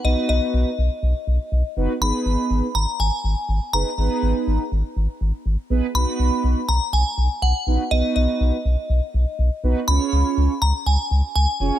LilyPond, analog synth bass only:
\new Staff \with { instrumentName = "Analog synth bass" } { \clef bass \time 4/4 \key b \lydian \tempo 4 = 122 b,,16 r16 b,,16 r16 b,,16 r16 b,,16 r16 b,,16 r16 b,,16 r16 b,,16 r16 fis,,16 r16 | gis,,16 r16 gis,,16 r16 gis,,16 r16 gis,,16 r16 gis,,16 r16 gis,,16 r16 gis,,16 r16 fis,,16 r16 | gis,,16 r16 gis,,16 r16 gis,,16 r16 gis,,16 r16 gis,,16 r16 gis,,16 r16 gis,,16 r16 ais,,16 r16 | b,,16 r16 b,,16 r16 b,,16 r16 b,,16 r16 b,,16 r16 b,,16 r16 b,,16 r16 ais,,16 r16 |
b,,16 r16 b,,16 r16 b,,16 r16 b,,16 r16 b,,16 r16 b,,16 r16 b,,16 r16 b,,16 r16 | cis,16 r16 cis,16 r16 cis,16 r16 cis,16 r16 cis,16 r16 cis,16 r16 cis,16 r16 eis,,16 r16 | }